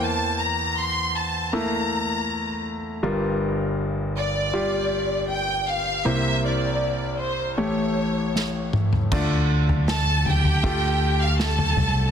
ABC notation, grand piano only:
X:1
M:4/4
L:1/8
Q:1/4=79
K:Cmix
V:1 name="Grand piano"
[B,Ec]3 z [A,B,E]4 | [G,FB]4 [G,FG]4 | [B,Ec]4 [A,G^c]4 | [K:Dm] [A,Fd]4 [A,FG]4 |]
V:2 name="Grand piano" clef=bass
[E,,E,]6- [E,,E,] z | [G,,,G,,]8 | [C,,C,]4 [A,,,A,,]4 | [K:Dm] D,3 z4 z |]